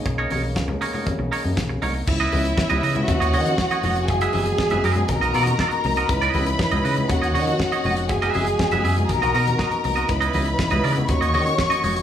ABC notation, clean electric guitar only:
X:1
M:4/4
L:1/16
Q:1/4=120
K:C#dor
V:1 name="Clean electric guitar"
z [DAc] [DAc] z3 [DAc] [DAc] z2 [DAc] z3 [DAc] z | z [EBd] [EBd] z2 [EBd] [EBd] z2 [Fcd] [Fcd] z2 [Fcd] [Fcd] z | z [GBe] [GBe] z2 [GBe] [GBe]2 z [FAd] [FAd]2 [FAd]2 z [FAd] | z [EBd] [EBd] z2 [EBd] [EBd] z2 [Fcd] [Fcd] z2 [Fcd] [Fcd] z |
z [GBe] [GBe] z2 [GBe] [GBe] z2 [FAd] [FAd] z [FAd] z2 [FAd] | z [EBd] [EBd] z2 [EBd] [EBd]2 z [Fcd] [Fcd] z2 [Fcd] [Fcd] z |]